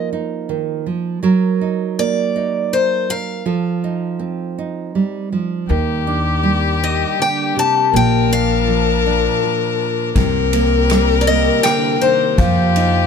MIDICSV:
0, 0, Header, 1, 8, 480
1, 0, Start_track
1, 0, Tempo, 743494
1, 794, Time_signature, 3, 2, 24, 8
1, 8436, End_track
2, 0, Start_track
2, 0, Title_t, "Vibraphone"
2, 0, Program_c, 0, 11
2, 3919, Note_on_c, 0, 86, 61
2, 4878, Note_on_c, 0, 67, 52
2, 5047, Note_off_c, 0, 86, 0
2, 5334, Note_off_c, 0, 67, 0
2, 7992, Note_on_c, 0, 77, 74
2, 8436, Note_off_c, 0, 77, 0
2, 8436, End_track
3, 0, Start_track
3, 0, Title_t, "Steel-string acoustic guitar"
3, 0, Program_c, 1, 25
3, 1286, Note_on_c, 1, 74, 76
3, 1763, Note_on_c, 1, 72, 70
3, 1773, Note_off_c, 1, 74, 0
3, 2003, Note_on_c, 1, 77, 80
3, 2005, Note_off_c, 1, 72, 0
3, 3416, Note_off_c, 1, 77, 0
3, 4414, Note_on_c, 1, 75, 73
3, 4655, Note_off_c, 1, 75, 0
3, 4659, Note_on_c, 1, 79, 81
3, 4897, Note_off_c, 1, 79, 0
3, 4900, Note_on_c, 1, 81, 85
3, 5138, Note_off_c, 1, 81, 0
3, 5141, Note_on_c, 1, 79, 90
3, 5372, Note_off_c, 1, 79, 0
3, 5375, Note_on_c, 1, 77, 81
3, 6301, Note_off_c, 1, 77, 0
3, 7238, Note_on_c, 1, 74, 64
3, 7275, Note_off_c, 1, 74, 0
3, 7278, Note_on_c, 1, 75, 85
3, 7508, Note_off_c, 1, 75, 0
3, 7511, Note_on_c, 1, 79, 92
3, 7757, Note_on_c, 1, 72, 79
3, 7759, Note_off_c, 1, 79, 0
3, 8436, Note_off_c, 1, 72, 0
3, 8436, End_track
4, 0, Start_track
4, 0, Title_t, "Violin"
4, 0, Program_c, 2, 40
4, 3670, Note_on_c, 2, 67, 86
4, 5093, Note_off_c, 2, 67, 0
4, 5116, Note_on_c, 2, 70, 99
4, 6530, Note_off_c, 2, 70, 0
4, 6558, Note_on_c, 2, 70, 107
4, 7991, Note_on_c, 2, 67, 92
4, 8000, Note_off_c, 2, 70, 0
4, 8436, Note_off_c, 2, 67, 0
4, 8436, End_track
5, 0, Start_track
5, 0, Title_t, "String section"
5, 0, Program_c, 3, 48
5, 3678, Note_on_c, 3, 58, 57
5, 3679, Note_on_c, 3, 55, 68
5, 3679, Note_on_c, 3, 67, 69
5, 5109, Note_off_c, 3, 55, 0
5, 5109, Note_off_c, 3, 67, 0
5, 5123, Note_on_c, 3, 53, 66
5, 5124, Note_on_c, 3, 62, 62
5, 5126, Note_on_c, 3, 81, 75
5, 6545, Note_off_c, 3, 53, 0
5, 6545, Note_off_c, 3, 62, 0
5, 6546, Note_off_c, 3, 81, 0
5, 6553, Note_on_c, 3, 67, 84
5, 6555, Note_on_c, 3, 48, 64
5, 6556, Note_on_c, 3, 60, 61
5, 7977, Note_off_c, 3, 67, 0
5, 7992, Note_on_c, 3, 65, 75
5, 8436, Note_off_c, 3, 48, 0
5, 8436, Note_off_c, 3, 58, 0
5, 8436, Note_off_c, 3, 60, 0
5, 8436, Note_off_c, 3, 65, 0
5, 8436, End_track
6, 0, Start_track
6, 0, Title_t, "Nylon-string guitar"
6, 0, Program_c, 4, 24
6, 0, Note_on_c, 4, 53, 69
6, 0, Note_on_c, 4, 58, 53
6, 0, Note_on_c, 4, 63, 47
6, 0, Note_on_c, 4, 70, 62
6, 79, Note_off_c, 4, 63, 0
6, 81, Note_on_c, 4, 63, 48
6, 317, Note_on_c, 4, 51, 54
6, 550, Note_off_c, 4, 53, 0
6, 555, Note_off_c, 4, 51, 0
6, 558, Note_on_c, 4, 53, 51
6, 768, Note_off_c, 4, 70, 0
6, 789, Note_off_c, 4, 53, 0
6, 791, Note_on_c, 4, 54, 74
6, 797, Note_on_c, 4, 70, 68
6, 1040, Note_off_c, 4, 63, 0
6, 1042, Note_on_c, 4, 63, 51
6, 1275, Note_off_c, 4, 58, 0
6, 1283, Note_on_c, 4, 58, 54
6, 1519, Note_off_c, 4, 63, 0
6, 1522, Note_on_c, 4, 63, 53
6, 1754, Note_off_c, 4, 70, 0
6, 1761, Note_on_c, 4, 70, 51
6, 1991, Note_off_c, 4, 70, 0
6, 1999, Note_on_c, 4, 70, 53
6, 2202, Note_off_c, 4, 54, 0
6, 2207, Note_off_c, 4, 70, 0
6, 2231, Note_on_c, 4, 53, 67
6, 2236, Note_on_c, 4, 69, 62
6, 2237, Note_off_c, 4, 58, 0
6, 2251, Note_off_c, 4, 63, 0
6, 2478, Note_on_c, 4, 63, 49
6, 2708, Note_on_c, 4, 60, 53
6, 2952, Note_off_c, 4, 63, 0
6, 2960, Note_on_c, 4, 63, 47
6, 3194, Note_off_c, 4, 53, 0
6, 3197, Note_on_c, 4, 55, 50
6, 3435, Note_off_c, 4, 55, 0
6, 3438, Note_on_c, 4, 53, 50
6, 3646, Note_off_c, 4, 60, 0
6, 3650, Note_off_c, 4, 69, 0
6, 3651, Note_off_c, 4, 63, 0
6, 3674, Note_on_c, 4, 51, 70
6, 3678, Note_off_c, 4, 53, 0
6, 3920, Note_on_c, 4, 62, 48
6, 4154, Note_on_c, 4, 55, 56
6, 4640, Note_off_c, 4, 51, 0
6, 4644, Note_on_c, 4, 50, 48
6, 4881, Note_off_c, 4, 50, 0
6, 4883, Note_on_c, 4, 48, 57
6, 4902, Note_off_c, 4, 62, 0
6, 5091, Note_off_c, 4, 55, 0
6, 5122, Note_on_c, 4, 46, 77
6, 5123, Note_off_c, 4, 48, 0
6, 5367, Note_on_c, 4, 62, 49
6, 5599, Note_on_c, 4, 53, 63
6, 5843, Note_off_c, 4, 62, 0
6, 5853, Note_on_c, 4, 62, 55
6, 6090, Note_on_c, 4, 65, 54
6, 6530, Note_off_c, 4, 46, 0
6, 6535, Note_off_c, 4, 65, 0
6, 6536, Note_off_c, 4, 62, 0
6, 6557, Note_off_c, 4, 53, 0
6, 6558, Note_on_c, 4, 48, 76
6, 6802, Note_on_c, 4, 58, 53
6, 7045, Note_on_c, 4, 55, 64
6, 7278, Note_off_c, 4, 58, 0
6, 7286, Note_on_c, 4, 58, 58
6, 7513, Note_off_c, 4, 48, 0
6, 7516, Note_on_c, 4, 50, 57
6, 7755, Note_off_c, 4, 50, 0
6, 7757, Note_on_c, 4, 51, 59
6, 7969, Note_off_c, 4, 55, 0
6, 7994, Note_on_c, 4, 53, 78
6, 7995, Note_off_c, 4, 51, 0
6, 8242, Note_on_c, 4, 63, 56
6, 8436, Note_off_c, 4, 53, 0
6, 8436, Note_off_c, 4, 58, 0
6, 8436, Note_off_c, 4, 63, 0
6, 8436, End_track
7, 0, Start_track
7, 0, Title_t, "Upright bass"
7, 0, Program_c, 5, 32
7, 3677, Note_on_c, 5, 39, 80
7, 4538, Note_off_c, 5, 39, 0
7, 5124, Note_on_c, 5, 34, 77
7, 5979, Note_off_c, 5, 34, 0
7, 6556, Note_on_c, 5, 36, 79
7, 7411, Note_off_c, 5, 36, 0
7, 7994, Note_on_c, 5, 41, 86
7, 8436, Note_off_c, 5, 41, 0
7, 8436, End_track
8, 0, Start_track
8, 0, Title_t, "Drums"
8, 6556, Note_on_c, 9, 51, 49
8, 6557, Note_on_c, 9, 36, 89
8, 6621, Note_off_c, 9, 51, 0
8, 6622, Note_off_c, 9, 36, 0
8, 6798, Note_on_c, 9, 51, 50
8, 6862, Note_off_c, 9, 51, 0
8, 7034, Note_on_c, 9, 51, 52
8, 7045, Note_on_c, 9, 37, 64
8, 7099, Note_off_c, 9, 51, 0
8, 7109, Note_off_c, 9, 37, 0
8, 7515, Note_on_c, 9, 51, 55
8, 7525, Note_on_c, 9, 37, 65
8, 7579, Note_off_c, 9, 51, 0
8, 7590, Note_off_c, 9, 37, 0
8, 7994, Note_on_c, 9, 36, 85
8, 7994, Note_on_c, 9, 51, 50
8, 8058, Note_off_c, 9, 36, 0
8, 8058, Note_off_c, 9, 51, 0
8, 8236, Note_on_c, 9, 51, 49
8, 8301, Note_off_c, 9, 51, 0
8, 8436, End_track
0, 0, End_of_file